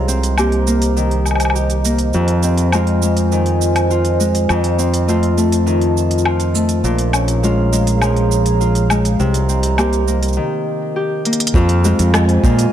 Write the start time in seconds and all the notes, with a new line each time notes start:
Already playing: C2 C3 C#4 F4 G4 C5 D#5 A#5
0.08 C4, shaker
0.23 open hi-hat, shaker
0.38 A#3 C4 G4, low woodblock, shaker
0.52 open hi-hat
0.67 A#3, shaker
0.82 open hi-hat, shaker
0.96 D#3, shaker
1.11 open hi-hat
1.26 low woodblock, shaker
1.31 low woodblock
1.36 low woodblock
1.40 open hi-hat, low woodblock, shaker
1.45 low woodblock
1.50 low woodblock
1.55 G4, shaker
1.70 open hi-hat, shaker
1.85 A#3, shaker
1.99 open hi-hat, shaker
2.13 F2 F4 G#5, shaker
2.28 open hi-hat
2.43 C4, shaker
2.58 open hi-hat, shaker
2.72 G#3 C4 F4, low woodblock, shaker
2.87 open hi-hat
3.02 G#3, shaker
3.17 open hi-hat, shaker
3.32 D#3, shaker
3.46 open hi-hat
3.61 shaker
3.76 open hi-hat, low woodblock, shaker
3.90 F4, shaker
4.05 open hi-hat, shaker
4.20 G#3, shaker
4.35 open hi-hat, shaker
4.49 F2 F4 A5, low woodblock, shaker
4.64 open hi-hat
4.79 C4, shaker
4.94 open hi-hat, shaker
5.08 A3 C4 F4, shaker
5.23 open hi-hat
5.37 A3, shaker
5.52 open hi-hat, shaker
5.66 D#3, shaker
5.81 open hi-hat
5.97 shaker
6.11 open hi-hat
6.18 shaker
6.25 F4, low woodblock
6.40 open hi-hat, shaker
6.54 A3, shaker
6.69 open hi-hat, shaker
6.84 A#1 A#2 G#4 C#5 F5 A#5, shaker
6.98 open hi-hat
7.13 C#4, low woodblock, shaker
7.28 open hi-hat, shaker
7.43 G#3 C#4 F4, shaker
7.72 G#3, shaker
7.87 open hi-hat, shaker
8.01 F3, low woodblock, shaker
8.16 open hi-hat
8.32 shaker
8.46 open hi-hat, shaker
8.60 F4, shaker
8.75 open hi-hat, shaker
8.90 G#3, low woodblock, shaker
9.05 open hi-hat, shaker
9.19 C2 C3 G4 C5 D#5 A#5, shaker
9.34 open hi-hat, shaker
9.49 C4, shaker
9.63 open hi-hat, shaker
9.78 A#3 C4 G4, low woodblock, shaker
9.93 open hi-hat, shaker
10.08 A#3, shaker
10.23 open hi-hat, shaker
10.28 shaker
10.33 D#3, shaker
10.96 G4
11.25 A#3, closed hi-hat
11.33 closed hi-hat
11.40 closed hi-hat
11.47 closed hi-hat
11.54 F2 F4 C5 D#5 G#5, kick, shaker
11.69 open hi-hat
11.84 G#3 C4 F4, shaker
11.99 F2, open hi-hat, shaker
12.14 G#3, cross-stick, low woodblock, shaker
12.29 open hi-hat
12.43 A#2 G#3 C4 F4, kick, shaker
12.59 open hi-hat, shaker